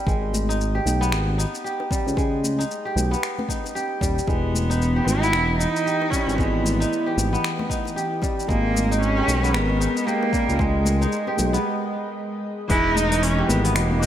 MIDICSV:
0, 0, Header, 1, 7, 480
1, 0, Start_track
1, 0, Key_signature, 5, "minor"
1, 0, Tempo, 526316
1, 63, Time_signature, 4, 2, 24, 8
1, 12824, End_track
2, 0, Start_track
2, 0, Title_t, "Kora"
2, 0, Program_c, 0, 46
2, 0, Note_on_c, 0, 55, 67
2, 0, Note_on_c, 0, 59, 87
2, 0, Note_on_c, 0, 63, 69
2, 0, Note_on_c, 0, 67, 78
2, 59, Note_on_c, 0, 56, 71
2, 109, Note_off_c, 0, 55, 0
2, 113, Note_off_c, 0, 67, 0
2, 442, Note_off_c, 0, 63, 0
2, 446, Note_on_c, 0, 63, 79
2, 682, Note_on_c, 0, 67, 74
2, 708, Note_off_c, 0, 59, 0
2, 920, Note_on_c, 0, 59, 98
2, 1255, Note_off_c, 0, 63, 0
2, 1259, Note_on_c, 0, 63, 75
2, 1495, Note_off_c, 0, 67, 0
2, 1499, Note_on_c, 0, 67, 77
2, 1741, Note_on_c, 0, 55, 72
2, 1968, Note_off_c, 0, 56, 0
2, 1979, Note_on_c, 0, 56, 76
2, 2034, Note_off_c, 0, 67, 0
2, 2355, Note_off_c, 0, 63, 0
2, 2358, Note_on_c, 0, 63, 76
2, 2602, Note_on_c, 0, 67, 68
2, 2620, Note_off_c, 0, 59, 0
2, 2838, Note_on_c, 0, 59, 90
2, 3175, Note_off_c, 0, 63, 0
2, 3179, Note_on_c, 0, 63, 70
2, 3417, Note_off_c, 0, 67, 0
2, 3421, Note_on_c, 0, 67, 78
2, 3646, Note_off_c, 0, 55, 0
2, 3657, Note_on_c, 0, 55, 67
2, 3887, Note_off_c, 0, 56, 0
2, 3898, Note_on_c, 0, 56, 72
2, 3949, Note_off_c, 0, 55, 0
2, 3953, Note_off_c, 0, 67, 0
2, 4280, Note_off_c, 0, 63, 0
2, 4283, Note_on_c, 0, 63, 77
2, 4525, Note_on_c, 0, 67, 70
2, 4538, Note_off_c, 0, 59, 0
2, 4761, Note_on_c, 0, 59, 91
2, 5095, Note_off_c, 0, 63, 0
2, 5099, Note_on_c, 0, 63, 75
2, 5341, Note_off_c, 0, 67, 0
2, 5344, Note_on_c, 0, 67, 80
2, 5584, Note_on_c, 0, 55, 71
2, 5811, Note_off_c, 0, 56, 0
2, 5822, Note_on_c, 0, 56, 73
2, 5877, Note_off_c, 0, 67, 0
2, 6200, Note_off_c, 0, 63, 0
2, 6203, Note_on_c, 0, 63, 78
2, 6442, Note_on_c, 0, 67, 74
2, 6461, Note_off_c, 0, 59, 0
2, 6683, Note_on_c, 0, 59, 96
2, 7015, Note_off_c, 0, 63, 0
2, 7018, Note_on_c, 0, 63, 73
2, 7257, Note_off_c, 0, 67, 0
2, 7261, Note_on_c, 0, 67, 83
2, 7488, Note_off_c, 0, 55, 0
2, 7499, Note_on_c, 0, 55, 70
2, 7728, Note_off_c, 0, 56, 0
2, 7739, Note_on_c, 0, 56, 80
2, 7789, Note_off_c, 0, 55, 0
2, 7794, Note_off_c, 0, 67, 0
2, 8125, Note_off_c, 0, 63, 0
2, 8128, Note_on_c, 0, 63, 82
2, 8363, Note_on_c, 0, 67, 73
2, 8382, Note_off_c, 0, 59, 0
2, 8603, Note_on_c, 0, 59, 102
2, 8936, Note_off_c, 0, 63, 0
2, 8940, Note_on_c, 0, 63, 78
2, 9176, Note_off_c, 0, 67, 0
2, 9180, Note_on_c, 0, 67, 78
2, 9422, Note_on_c, 0, 55, 72
2, 9646, Note_off_c, 0, 56, 0
2, 9657, Note_on_c, 0, 56, 79
2, 9712, Note_off_c, 0, 67, 0
2, 10041, Note_off_c, 0, 63, 0
2, 10045, Note_on_c, 0, 63, 76
2, 10285, Note_on_c, 0, 67, 71
2, 10303, Note_off_c, 0, 59, 0
2, 10517, Note_on_c, 0, 59, 98
2, 11524, Note_off_c, 0, 63, 0
2, 11556, Note_off_c, 0, 55, 0
2, 11572, Note_off_c, 0, 56, 0
2, 11573, Note_off_c, 0, 67, 0
2, 11582, Note_on_c, 0, 56, 77
2, 11963, Note_on_c, 0, 63, 83
2, 12203, Note_on_c, 0, 67, 78
2, 12217, Note_off_c, 0, 59, 0
2, 12442, Note_on_c, 0, 59, 99
2, 12779, Note_off_c, 0, 63, 0
2, 12783, Note_on_c, 0, 63, 73
2, 12824, Note_off_c, 0, 56, 0
2, 12824, Note_off_c, 0, 59, 0
2, 12824, Note_off_c, 0, 63, 0
2, 12824, Note_off_c, 0, 67, 0
2, 12824, End_track
3, 0, Start_track
3, 0, Title_t, "Cello"
3, 0, Program_c, 1, 42
3, 3898, Note_on_c, 1, 59, 88
3, 4610, Note_on_c, 1, 64, 106
3, 4623, Note_off_c, 1, 59, 0
3, 5082, Note_off_c, 1, 64, 0
3, 5087, Note_on_c, 1, 63, 105
3, 5565, Note_on_c, 1, 61, 88
3, 5579, Note_off_c, 1, 63, 0
3, 5807, Note_on_c, 1, 59, 81
3, 5820, Note_off_c, 1, 61, 0
3, 6535, Note_off_c, 1, 59, 0
3, 7736, Note_on_c, 1, 58, 97
3, 8186, Note_off_c, 1, 58, 0
3, 8223, Note_on_c, 1, 61, 102
3, 8649, Note_off_c, 1, 61, 0
3, 8649, Note_on_c, 1, 61, 70
3, 8692, Note_on_c, 1, 59, 100
3, 8705, Note_off_c, 1, 61, 0
3, 9179, Note_on_c, 1, 58, 99
3, 9193, Note_off_c, 1, 59, 0
3, 9665, Note_on_c, 1, 56, 85
3, 9679, Note_off_c, 1, 58, 0
3, 10624, Note_off_c, 1, 56, 0
3, 11581, Note_on_c, 1, 64, 102
3, 11817, Note_on_c, 1, 63, 107
3, 11831, Note_off_c, 1, 64, 0
3, 12061, Note_on_c, 1, 61, 97
3, 12074, Note_off_c, 1, 63, 0
3, 12293, Note_off_c, 1, 61, 0
3, 12298, Note_on_c, 1, 59, 101
3, 12407, Note_off_c, 1, 59, 0
3, 12539, Note_on_c, 1, 58, 101
3, 12824, Note_off_c, 1, 58, 0
3, 12824, End_track
4, 0, Start_track
4, 0, Title_t, "Analog synth pad"
4, 0, Program_c, 2, 89
4, 3897, Note_on_c, 2, 52, 85
4, 4344, Note_on_c, 2, 75, 69
4, 7735, Note_on_c, 2, 56, 82
4, 7740, Note_off_c, 2, 52, 0
4, 7856, Note_on_c, 2, 70, 90
4, 11579, Note_off_c, 2, 56, 0
4, 11582, Note_off_c, 2, 70, 0
4, 11584, Note_on_c, 2, 52, 83
4, 12824, Note_off_c, 2, 52, 0
4, 12824, Note_off_c, 2, 75, 0
4, 12824, End_track
5, 0, Start_track
5, 0, Title_t, "Clean electric guitar"
5, 0, Program_c, 3, 27
5, 11562, Note_on_c, 3, 52, 90
5, 11572, Note_on_c, 3, 56, 82
5, 11579, Note_on_c, 3, 59, 86
5, 11589, Note_on_c, 3, 63, 87
5, 12749, Note_off_c, 3, 52, 0
5, 12754, Note_off_c, 3, 56, 0
5, 12758, Note_off_c, 3, 59, 0
5, 12763, Note_off_c, 3, 63, 0
5, 12764, Note_on_c, 3, 52, 71
5, 12773, Note_on_c, 3, 56, 63
5, 12783, Note_on_c, 3, 47, 62
5, 12790, Note_on_c, 3, 63, 63
5, 12824, Note_off_c, 3, 47, 0
5, 12824, Note_off_c, 3, 52, 0
5, 12824, Note_off_c, 3, 56, 0
5, 12824, Note_off_c, 3, 63, 0
5, 12824, End_track
6, 0, Start_track
6, 0, Title_t, "Analog synth bass"
6, 0, Program_c, 4, 38
6, 59, Note_on_c, 4, 32, 91
6, 729, Note_off_c, 4, 32, 0
6, 780, Note_on_c, 4, 35, 95
6, 1018, Note_on_c, 4, 32, 103
6, 1032, Note_off_c, 4, 35, 0
6, 1327, Note_off_c, 4, 32, 0
6, 1883, Note_on_c, 4, 37, 94
6, 2410, Note_off_c, 4, 37, 0
6, 2697, Note_on_c, 4, 35, 100
6, 2875, Note_off_c, 4, 35, 0
6, 3657, Note_on_c, 4, 27, 75
6, 3835, Note_off_c, 4, 27, 0
6, 3899, Note_on_c, 4, 28, 95
6, 4569, Note_off_c, 4, 28, 0
6, 4618, Note_on_c, 4, 32, 97
6, 4857, Note_on_c, 4, 28, 100
6, 4871, Note_off_c, 4, 32, 0
6, 5166, Note_off_c, 4, 28, 0
6, 5723, Note_on_c, 4, 32, 92
6, 6249, Note_off_c, 4, 32, 0
6, 6540, Note_on_c, 4, 32, 89
6, 6716, Note_off_c, 4, 32, 0
6, 7740, Note_on_c, 4, 32, 97
6, 8409, Note_off_c, 4, 32, 0
6, 8461, Note_on_c, 4, 35, 103
6, 8702, Note_on_c, 4, 32, 104
6, 8715, Note_off_c, 4, 35, 0
6, 9008, Note_off_c, 4, 32, 0
6, 9563, Note_on_c, 4, 37, 96
6, 10090, Note_off_c, 4, 37, 0
6, 10383, Note_on_c, 4, 35, 97
6, 10558, Note_off_c, 4, 35, 0
6, 11577, Note_on_c, 4, 28, 97
6, 12248, Note_off_c, 4, 28, 0
6, 12300, Note_on_c, 4, 32, 101
6, 12542, Note_on_c, 4, 28, 105
6, 12556, Note_off_c, 4, 32, 0
6, 12824, Note_off_c, 4, 28, 0
6, 12824, End_track
7, 0, Start_track
7, 0, Title_t, "Drums"
7, 60, Note_on_c, 9, 36, 127
7, 65, Note_on_c, 9, 60, 57
7, 77, Note_on_c, 9, 82, 36
7, 151, Note_off_c, 9, 36, 0
7, 156, Note_off_c, 9, 60, 0
7, 168, Note_off_c, 9, 82, 0
7, 304, Note_on_c, 9, 64, 91
7, 314, Note_on_c, 9, 82, 75
7, 395, Note_off_c, 9, 64, 0
7, 405, Note_off_c, 9, 82, 0
7, 461, Note_on_c, 9, 82, 47
7, 552, Note_off_c, 9, 82, 0
7, 556, Note_on_c, 9, 82, 34
7, 647, Note_off_c, 9, 82, 0
7, 687, Note_on_c, 9, 60, 35
7, 778, Note_off_c, 9, 60, 0
7, 781, Note_on_c, 9, 64, 78
7, 794, Note_on_c, 9, 82, 74
7, 872, Note_off_c, 9, 64, 0
7, 886, Note_off_c, 9, 82, 0
7, 938, Note_on_c, 9, 82, 43
7, 1025, Note_on_c, 9, 26, 76
7, 1029, Note_off_c, 9, 82, 0
7, 1033, Note_on_c, 9, 82, 33
7, 1116, Note_off_c, 9, 26, 0
7, 1125, Note_off_c, 9, 82, 0
7, 1168, Note_on_c, 9, 63, 59
7, 1259, Note_off_c, 9, 63, 0
7, 1275, Note_on_c, 9, 82, 80
7, 1367, Note_off_c, 9, 82, 0
7, 1414, Note_on_c, 9, 82, 44
7, 1505, Note_off_c, 9, 82, 0
7, 1516, Note_on_c, 9, 82, 34
7, 1607, Note_off_c, 9, 82, 0
7, 1641, Note_on_c, 9, 60, 57
7, 1732, Note_off_c, 9, 60, 0
7, 1740, Note_on_c, 9, 36, 109
7, 1740, Note_on_c, 9, 63, 80
7, 1755, Note_on_c, 9, 82, 82
7, 1831, Note_off_c, 9, 36, 0
7, 1831, Note_off_c, 9, 63, 0
7, 1847, Note_off_c, 9, 82, 0
7, 1898, Note_on_c, 9, 82, 44
7, 1977, Note_on_c, 9, 60, 60
7, 1979, Note_on_c, 9, 36, 119
7, 1989, Note_off_c, 9, 82, 0
7, 1994, Note_on_c, 9, 82, 33
7, 2068, Note_off_c, 9, 60, 0
7, 2070, Note_off_c, 9, 36, 0
7, 2085, Note_off_c, 9, 82, 0
7, 2222, Note_on_c, 9, 64, 78
7, 2231, Note_on_c, 9, 82, 76
7, 2313, Note_off_c, 9, 64, 0
7, 2322, Note_off_c, 9, 82, 0
7, 2378, Note_on_c, 9, 82, 44
7, 2469, Note_off_c, 9, 82, 0
7, 2473, Note_on_c, 9, 82, 33
7, 2565, Note_off_c, 9, 82, 0
7, 2616, Note_on_c, 9, 60, 30
7, 2704, Note_on_c, 9, 64, 82
7, 2707, Note_off_c, 9, 60, 0
7, 2716, Note_on_c, 9, 82, 78
7, 2795, Note_off_c, 9, 64, 0
7, 2807, Note_off_c, 9, 82, 0
7, 2862, Note_on_c, 9, 82, 43
7, 2948, Note_on_c, 9, 26, 74
7, 2953, Note_off_c, 9, 82, 0
7, 2957, Note_on_c, 9, 82, 32
7, 3040, Note_off_c, 9, 26, 0
7, 3048, Note_off_c, 9, 82, 0
7, 3086, Note_on_c, 9, 63, 67
7, 3087, Note_on_c, 9, 64, 91
7, 3092, Note_on_c, 9, 60, 60
7, 3177, Note_off_c, 9, 63, 0
7, 3179, Note_off_c, 9, 64, 0
7, 3180, Note_on_c, 9, 36, 55
7, 3183, Note_off_c, 9, 60, 0
7, 3195, Note_on_c, 9, 82, 78
7, 3271, Note_off_c, 9, 36, 0
7, 3286, Note_off_c, 9, 82, 0
7, 3321, Note_on_c, 9, 60, 50
7, 3339, Note_on_c, 9, 82, 40
7, 3412, Note_off_c, 9, 60, 0
7, 3430, Note_off_c, 9, 82, 0
7, 3431, Note_on_c, 9, 63, 57
7, 3436, Note_on_c, 9, 82, 34
7, 3522, Note_off_c, 9, 63, 0
7, 3527, Note_off_c, 9, 82, 0
7, 3660, Note_on_c, 9, 36, 96
7, 3663, Note_on_c, 9, 63, 74
7, 3666, Note_on_c, 9, 60, 65
7, 3674, Note_on_c, 9, 82, 80
7, 3751, Note_off_c, 9, 36, 0
7, 3754, Note_off_c, 9, 63, 0
7, 3757, Note_off_c, 9, 60, 0
7, 3766, Note_off_c, 9, 82, 0
7, 3818, Note_on_c, 9, 82, 45
7, 3898, Note_on_c, 9, 60, 58
7, 3899, Note_on_c, 9, 36, 115
7, 3909, Note_off_c, 9, 82, 0
7, 3916, Note_on_c, 9, 82, 32
7, 3989, Note_off_c, 9, 60, 0
7, 3990, Note_off_c, 9, 36, 0
7, 4008, Note_off_c, 9, 82, 0
7, 4146, Note_on_c, 9, 64, 78
7, 4158, Note_on_c, 9, 82, 68
7, 4237, Note_off_c, 9, 64, 0
7, 4249, Note_off_c, 9, 82, 0
7, 4296, Note_on_c, 9, 82, 45
7, 4387, Note_off_c, 9, 82, 0
7, 4396, Note_on_c, 9, 82, 30
7, 4488, Note_off_c, 9, 82, 0
7, 4529, Note_on_c, 9, 60, 31
7, 4620, Note_off_c, 9, 60, 0
7, 4624, Note_on_c, 9, 64, 68
7, 4635, Note_on_c, 9, 82, 75
7, 4715, Note_off_c, 9, 64, 0
7, 4726, Note_off_c, 9, 82, 0
7, 4775, Note_on_c, 9, 82, 41
7, 4864, Note_on_c, 9, 26, 69
7, 4867, Note_off_c, 9, 82, 0
7, 4873, Note_on_c, 9, 82, 32
7, 4955, Note_off_c, 9, 26, 0
7, 4964, Note_off_c, 9, 82, 0
7, 5012, Note_on_c, 9, 63, 56
7, 5103, Note_off_c, 9, 63, 0
7, 5115, Note_on_c, 9, 82, 77
7, 5206, Note_off_c, 9, 82, 0
7, 5258, Note_on_c, 9, 82, 38
7, 5349, Note_off_c, 9, 82, 0
7, 5357, Note_on_c, 9, 82, 34
7, 5448, Note_off_c, 9, 82, 0
7, 5486, Note_on_c, 9, 60, 63
7, 5578, Note_off_c, 9, 60, 0
7, 5579, Note_on_c, 9, 36, 91
7, 5586, Note_on_c, 9, 63, 71
7, 5594, Note_on_c, 9, 82, 80
7, 5670, Note_off_c, 9, 36, 0
7, 5677, Note_off_c, 9, 63, 0
7, 5685, Note_off_c, 9, 82, 0
7, 5739, Note_on_c, 9, 82, 43
7, 5820, Note_on_c, 9, 36, 117
7, 5829, Note_on_c, 9, 60, 65
7, 5830, Note_off_c, 9, 82, 0
7, 5837, Note_on_c, 9, 82, 32
7, 5911, Note_off_c, 9, 36, 0
7, 5921, Note_off_c, 9, 60, 0
7, 5928, Note_off_c, 9, 82, 0
7, 6065, Note_on_c, 9, 64, 86
7, 6076, Note_on_c, 9, 82, 68
7, 6157, Note_off_c, 9, 64, 0
7, 6167, Note_off_c, 9, 82, 0
7, 6218, Note_on_c, 9, 82, 45
7, 6309, Note_off_c, 9, 82, 0
7, 6318, Note_on_c, 9, 82, 30
7, 6409, Note_off_c, 9, 82, 0
7, 6453, Note_on_c, 9, 60, 36
7, 6541, Note_on_c, 9, 64, 67
7, 6544, Note_off_c, 9, 60, 0
7, 6554, Note_on_c, 9, 82, 74
7, 6632, Note_off_c, 9, 64, 0
7, 6645, Note_off_c, 9, 82, 0
7, 6700, Note_on_c, 9, 82, 41
7, 6789, Note_on_c, 9, 26, 73
7, 6791, Note_off_c, 9, 82, 0
7, 6798, Note_on_c, 9, 82, 31
7, 6880, Note_off_c, 9, 26, 0
7, 6889, Note_off_c, 9, 82, 0
7, 6924, Note_on_c, 9, 60, 58
7, 6926, Note_on_c, 9, 64, 91
7, 6927, Note_on_c, 9, 63, 55
7, 7016, Note_off_c, 9, 60, 0
7, 7017, Note_off_c, 9, 64, 0
7, 7018, Note_off_c, 9, 63, 0
7, 7021, Note_on_c, 9, 36, 54
7, 7034, Note_on_c, 9, 82, 72
7, 7112, Note_off_c, 9, 36, 0
7, 7125, Note_off_c, 9, 82, 0
7, 7163, Note_on_c, 9, 60, 50
7, 7180, Note_on_c, 9, 82, 40
7, 7254, Note_off_c, 9, 60, 0
7, 7254, Note_on_c, 9, 63, 54
7, 7271, Note_off_c, 9, 82, 0
7, 7278, Note_on_c, 9, 82, 32
7, 7345, Note_off_c, 9, 63, 0
7, 7369, Note_off_c, 9, 82, 0
7, 7494, Note_on_c, 9, 60, 57
7, 7501, Note_on_c, 9, 36, 89
7, 7502, Note_on_c, 9, 63, 72
7, 7513, Note_on_c, 9, 82, 73
7, 7585, Note_off_c, 9, 60, 0
7, 7592, Note_off_c, 9, 36, 0
7, 7593, Note_off_c, 9, 63, 0
7, 7604, Note_off_c, 9, 82, 0
7, 7658, Note_on_c, 9, 82, 40
7, 7737, Note_on_c, 9, 60, 69
7, 7742, Note_on_c, 9, 36, 106
7, 7749, Note_off_c, 9, 82, 0
7, 7756, Note_on_c, 9, 82, 31
7, 7828, Note_off_c, 9, 60, 0
7, 7833, Note_off_c, 9, 36, 0
7, 7847, Note_off_c, 9, 82, 0
7, 7975, Note_on_c, 9, 64, 83
7, 7997, Note_on_c, 9, 82, 69
7, 8066, Note_off_c, 9, 64, 0
7, 8088, Note_off_c, 9, 82, 0
7, 8138, Note_on_c, 9, 82, 42
7, 8229, Note_off_c, 9, 82, 0
7, 8232, Note_on_c, 9, 82, 30
7, 8323, Note_off_c, 9, 82, 0
7, 8369, Note_on_c, 9, 60, 36
7, 8460, Note_off_c, 9, 60, 0
7, 8462, Note_on_c, 9, 64, 71
7, 8471, Note_on_c, 9, 82, 71
7, 8553, Note_off_c, 9, 64, 0
7, 8562, Note_off_c, 9, 82, 0
7, 8615, Note_on_c, 9, 82, 41
7, 8704, Note_on_c, 9, 26, 70
7, 8707, Note_off_c, 9, 82, 0
7, 8713, Note_on_c, 9, 82, 31
7, 8796, Note_off_c, 9, 26, 0
7, 8804, Note_off_c, 9, 82, 0
7, 8845, Note_on_c, 9, 63, 65
7, 8936, Note_off_c, 9, 63, 0
7, 8953, Note_on_c, 9, 82, 76
7, 9044, Note_off_c, 9, 82, 0
7, 9094, Note_on_c, 9, 82, 40
7, 9185, Note_off_c, 9, 82, 0
7, 9192, Note_on_c, 9, 82, 32
7, 9283, Note_off_c, 9, 82, 0
7, 9327, Note_on_c, 9, 60, 60
7, 9418, Note_off_c, 9, 60, 0
7, 9420, Note_on_c, 9, 36, 97
7, 9424, Note_on_c, 9, 63, 70
7, 9432, Note_on_c, 9, 82, 73
7, 9511, Note_off_c, 9, 36, 0
7, 9515, Note_off_c, 9, 63, 0
7, 9523, Note_off_c, 9, 82, 0
7, 9573, Note_on_c, 9, 82, 41
7, 9659, Note_on_c, 9, 60, 65
7, 9660, Note_on_c, 9, 36, 117
7, 9664, Note_off_c, 9, 82, 0
7, 9670, Note_on_c, 9, 82, 31
7, 9750, Note_off_c, 9, 60, 0
7, 9751, Note_off_c, 9, 36, 0
7, 9761, Note_off_c, 9, 82, 0
7, 9896, Note_on_c, 9, 64, 83
7, 9908, Note_on_c, 9, 82, 70
7, 9987, Note_off_c, 9, 64, 0
7, 9999, Note_off_c, 9, 82, 0
7, 10051, Note_on_c, 9, 82, 42
7, 10142, Note_off_c, 9, 82, 0
7, 10144, Note_on_c, 9, 82, 31
7, 10235, Note_off_c, 9, 82, 0
7, 10278, Note_on_c, 9, 63, 39
7, 10280, Note_on_c, 9, 60, 43
7, 10370, Note_off_c, 9, 63, 0
7, 10372, Note_off_c, 9, 60, 0
7, 10373, Note_on_c, 9, 64, 74
7, 10385, Note_on_c, 9, 82, 70
7, 10464, Note_off_c, 9, 64, 0
7, 10476, Note_off_c, 9, 82, 0
7, 10529, Note_on_c, 9, 82, 40
7, 10620, Note_off_c, 9, 82, 0
7, 11579, Note_on_c, 9, 36, 117
7, 11581, Note_on_c, 9, 46, 61
7, 11582, Note_on_c, 9, 60, 80
7, 11590, Note_on_c, 9, 82, 33
7, 11670, Note_off_c, 9, 36, 0
7, 11672, Note_off_c, 9, 46, 0
7, 11674, Note_off_c, 9, 60, 0
7, 11681, Note_off_c, 9, 82, 0
7, 11811, Note_on_c, 9, 64, 87
7, 11832, Note_on_c, 9, 82, 76
7, 11902, Note_off_c, 9, 64, 0
7, 11923, Note_off_c, 9, 82, 0
7, 11965, Note_on_c, 9, 46, 48
7, 11973, Note_on_c, 9, 82, 43
7, 12056, Note_off_c, 9, 46, 0
7, 12065, Note_off_c, 9, 82, 0
7, 12066, Note_on_c, 9, 46, 54
7, 12075, Note_on_c, 9, 82, 33
7, 12157, Note_off_c, 9, 46, 0
7, 12166, Note_off_c, 9, 82, 0
7, 12208, Note_on_c, 9, 60, 40
7, 12299, Note_off_c, 9, 60, 0
7, 12301, Note_on_c, 9, 64, 77
7, 12312, Note_on_c, 9, 82, 74
7, 12392, Note_off_c, 9, 64, 0
7, 12403, Note_off_c, 9, 82, 0
7, 12447, Note_on_c, 9, 46, 46
7, 12456, Note_on_c, 9, 82, 43
7, 12538, Note_off_c, 9, 46, 0
7, 12547, Note_off_c, 9, 82, 0
7, 12547, Note_on_c, 9, 26, 86
7, 12547, Note_on_c, 9, 46, 59
7, 12555, Note_on_c, 9, 82, 35
7, 12638, Note_off_c, 9, 26, 0
7, 12638, Note_off_c, 9, 46, 0
7, 12647, Note_off_c, 9, 82, 0
7, 12689, Note_on_c, 9, 63, 76
7, 12780, Note_off_c, 9, 63, 0
7, 12796, Note_on_c, 9, 82, 81
7, 12824, Note_off_c, 9, 82, 0
7, 12824, End_track
0, 0, End_of_file